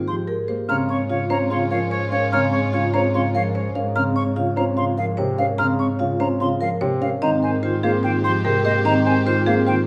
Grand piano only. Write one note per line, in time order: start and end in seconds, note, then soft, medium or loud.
0.00 0.14 D#3 medium
0.08 0.35 F3 medium
0.49 0.75 A#3 medium
0.69 0.95 C#3 medium
1.10 1.36 C#3 medium
1.30 1.57 C#4 medium
1.51 1.77 C#3 medium
1.71 1.98 F3 medium
2.12 2.38 C#4 medium
2.33 2.59 C#3 medium
2.74 3.00 C#3 medium
2.94 3.20 C#4 loud
3.14 3.41 C#3 medium
3.35 3.61 F3 medium
3.75 4.02 C#4 medium
3.96 4.22 C#3 medium
4.36 4.63 C#3 medium
4.57 4.83 C#4 medium
4.78 5.04 C#3 medium
4.98 5.24 F3 medium
5.18 5.45 C3 medium
5.39 5.65 C#4 medium
5.59 5.85 C#3 loud
6.00 6.26 C#3 medium
6.20 6.46 C#4 medium
6.41 6.67 C#3 medium
6.61 6.87 F3 medium
6.81 7.08 C3 loud
7.01 7.28 C#4 medium
7.22 7.49 D#3 medium
7.63 7.89 D#3 medium
7.83 8.10 A#3 loud
8.04 8.30 D#3 medium
8.24 8.51 F3 medium
8.45 8.71 C3 medium
8.65 8.92 A#3 medium
8.85 9.12 D#3 medium
9.26 9.53 D#3 medium
9.47 9.73 A#3 loud
9.68 9.87 D#3 medium